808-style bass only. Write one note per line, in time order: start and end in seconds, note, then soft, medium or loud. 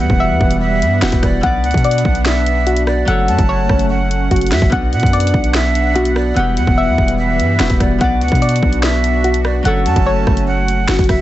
0.10 0.32 E1 loud
0.30 0.40 E2 loud
0.41 0.83 E1 loud
0.82 1.01 G2 loud
1.02 1.12 E1 loud
1.12 1.22 E1 loud
1.23 1.43 E1 loud
1.43 1.65 B1 loud
1.64 1.74 D2 loud
1.74 2.04 B2 loud
2.05 3.04 B1 loud
3.08 3.30 F#1 loud
3.28 3.38 F#2 loud
3.39 3.68 F#1 loud
3.69 4.29 F#1 loud
4.31 4.53 F#1 loud
4.52 4.61 F#2 loud
4.62 4.72 F#1 loud
4.72 4.94 B1 loud
4.93 5.03 B2 loud
5.03 5.33 F#2 loud
5.34 6.33 B1 loud
6.37 6.59 E1 loud
6.57 6.67 E2 loud
6.67 6.89 E1 loud
6.88 6.98 E2 loud
6.98 7.41 E1 loud
7.39 7.59 G2 loud
7.60 7.69 E1 loud
7.70 7.80 E1 loud
7.80 8.00 E1 loud
8.01 8.23 B1 loud
8.21 8.31 D2 loud
8.32 8.61 B2 loud
8.63 9.61 B1 loud
9.65 9.87 F#1 loud
9.86 9.96 F#2 loud
9.96 10.26 F#1 loud
10.27 10.86 F#1 loud
10.88 10.98 F#1 loud
10.99 11.09 F#1 loud
11.09 11.21 F#1 loud